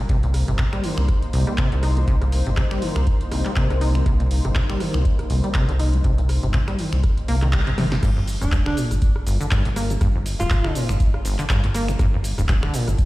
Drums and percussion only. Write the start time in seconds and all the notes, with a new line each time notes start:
0.09 kick, closed hi-hat
0.23 closed hi-hat
0.34 cross-stick, open hi-hat
0.48 closed hi-hat
0.59 kick, clap, closed hi-hat
0.73 finger snap, cross-stick, closed hi-hat
0.84 open hi-hat
0.98 finger snap
1.08 kick, cross-stick, closed hi-hat
1.22 closed hi-hat
1.33 open hi-hat
1.47 cross-stick, closed hi-hat
1.58 kick, clap, closed hi-hat
1.72 closed hi-hat
1.83 cross-stick, open hi-hat
1.97 closed hi-hat
2.08 kick, closed hi-hat
2.22 cross-stick, closed hi-hat
2.32 open hi-hat
2.46 closed hi-hat
2.57 kick, cross-stick, clap, closed hi-hat
2.71 finger snap, closed hi-hat
2.82 open hi-hat
2.96 finger snap, cross-stick
3.07 kick, closed hi-hat
3.21 closed hi-hat
3.32 cross-stick, open hi-hat
3.45 clap, closed hi-hat
3.56 kick, clap, closed hi-hat
3.70 cross-stick, closed hi-hat
3.81 open hi-hat
3.95 finger snap, closed hi-hat
4.06 kick, cross-stick, closed hi-hat
4.20 closed hi-hat
4.31 open hi-hat
4.45 cross-stick, closed hi-hat
4.55 kick, clap, closed hi-hat
4.70 finger snap, closed hi-hat
4.80 cross-stick, open hi-hat
4.94 finger snap
5.05 kick, closed hi-hat
5.19 cross-stick, closed hi-hat
5.30 open hi-hat
5.44 closed hi-hat
5.54 kick, cross-stick, clap, closed hi-hat
5.69 closed hi-hat
5.79 open hi-hat
5.93 closed hi-hat
6.04 kick, closed hi-hat
6.18 closed hi-hat
6.29 cross-stick, open hi-hat
6.43 closed hi-hat
6.54 kick, clap, closed hi-hat
6.68 finger snap, cross-stick, closed hi-hat
6.79 open hi-hat
6.93 finger snap
7.03 kick, cross-stick, closed hi-hat
7.17 closed hi-hat
7.28 open hi-hat
7.42 cross-stick, clap
7.53 kick, clap, closed hi-hat
7.67 closed hi-hat
7.78 cross-stick, open hi-hat, high tom
7.92 finger snap, snare
8.03 kick, cross-stick, closed hi-hat, crash, shaker
8.28 open hi-hat, shaker
8.41 cross-stick, closed hi-hat, shaker
8.52 kick, clap, closed hi-hat, shaker
8.66 finger snap, cross-stick
8.77 open hi-hat, shaker
8.91 cross-stick, closed hi-hat, shaker
9.02 kick, closed hi-hat, shaker
9.16 cross-stick
9.27 open hi-hat, shaker
9.41 closed hi-hat, shaker
9.51 kick, cross-stick, clap, closed hi-hat, shaker
9.65 closed hi-hat
9.76 cross-stick, open hi-hat, shaker
9.90 closed hi-hat, shaker
10.01 kick, cross-stick, closed hi-hat, shaker
10.26 open hi-hat, shaker
10.40 cross-stick, closed hi-hat, shaker
10.50 kick, clap, closed hi-hat, shaker
10.64 finger snap, cross-stick
10.75 open hi-hat, shaker
10.89 finger snap, cross-stick, closed hi-hat, shaker
11.00 kick, closed hi-hat, shaker
11.14 cross-stick
11.25 open hi-hat, shaker
11.38 clap, closed hi-hat, shaker
11.49 kick, cross-stick, clap, closed hi-hat, shaker
11.64 closed hi-hat
11.74 cross-stick, open hi-hat, shaker
11.88 finger snap, closed hi-hat, shaker
11.99 kick, cross-stick, closed hi-hat, shaker
12.24 open hi-hat, shaker
12.38 cross-stick, closed hi-hat, shaker
12.49 kick, clap, closed hi-hat, shaker
12.63 finger snap, cross-stick
12.74 open hi-hat, shaker
12.88 cross-stick, closed hi-hat, shaker
12.98 kick, closed hi-hat, shaker